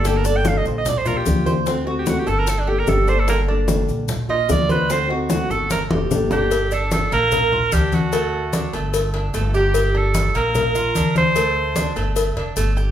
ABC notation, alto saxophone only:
X:1
M:4/4
L:1/16
Q:1/4=148
K:Gm
V:1 name="Alto saxophone"
G B d g f e c e d c B G4 z | z3 G ^F G A B A D G B A2 c A | B2 z8 e2 d2 =B2 | c2 E2 ^F2 A2 B2 z4 G2- |
G2 A2 A2 B6 G2 ^F2- | ^F6 z8 G2- | G2 A4 B8 c2- | c6 z8 z2 |]